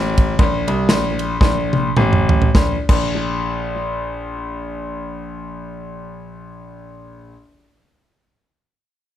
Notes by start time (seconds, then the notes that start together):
Already playing: A1
0.18 kick, ride
0.39 A#1, kick, ride
0.67 C2, ride
0.89 A#1, snare, ride
1.19 ride
1.41 A#1, kick, snare
1.73 high tom
1.97 A1, mid tom
2.13 mid tom
2.29 floor tom
2.42 floor tom
2.55 A#1, kick, snare
2.89 A#1, kick, crash